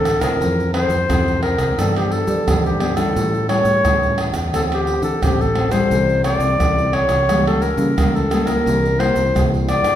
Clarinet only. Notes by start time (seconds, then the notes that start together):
Already playing: A4
0.21 A#4
0.74 C5
1.43 A#4
1.79 A4
1.97 G4
2.12 A4
2.65 G4
2.96 A4
3.49 C#5
4.55 A4
4.73 G4
5.03 A4
5.22 G4
5.41 A4
5.71 C5
6.25 D5
6.94 C#5
7.47 A4
7.62 A#4
8.16 A4
8.47 A#4
8.99 C5
9.69 D5